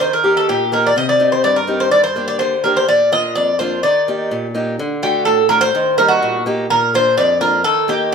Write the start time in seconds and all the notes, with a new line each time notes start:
0.00 D#3 C5
0.13 A#4
0.24 A#3 D#4 G4
0.37 A4
0.49 A#2 G4
0.72 A#3 D#4 G4 A#4
0.87 D5
0.96 C3 D#5
1.09 D5
1.20 C4 D#4 G4
1.32 C5
1.44 G2 D5
1.56 A#4
1.67 C4 D#4 G4
1.80 C5
1.91 G2 D5
2.04 C5
2.16 A#3 D4 G4
2.28 D5
2.39 D3 C5
2.64 A#3 D4 G4 A#4
2.77 C5
2.88 A#2 D5
3.12 A#3 D4 F4 D#5
3.35 F2 D5
3.59 A#3 D4 F4 C5
3.83 D#3 D5
4.08 A#3 D#4 G4
4.31 A#2
4.55 A#3 D#4 G4
4.79 D3
5.02 A3 D4 F#4 G4
5.25 A2 A4
5.49 A3 D4 F#4 A#4
5.61 C5
5.75 D#3
5.98 G3 A#3 D#4 A#4
6.08 F#4
6.22 A#2
6.46 A#3 D#4 G4
6.70 A#2 A#4
6.94 A#3 D4 F4 C5
7.17 F2 D5
7.41 A#3 D4 F4 A#4
7.64 D#3 A4
7.88 A#3 D#4 G4